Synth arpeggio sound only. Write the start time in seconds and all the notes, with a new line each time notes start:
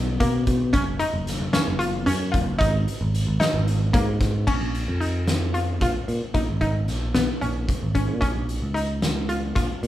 0.20 A#3
0.73 C#4
0.99 D#4
1.53 C#4
1.79 F4
2.06 C#4
2.32 F4
2.58 D#4
3.40 D#4
3.93 A#3
4.47 C#4
5.00 D#4
5.54 F4
5.82 F4
6.34 D#4
6.61 D#4
7.14 B3
7.41 C#4
7.95 C#4
8.21 C#4
8.74 D#4
9.29 F4
9.55 F4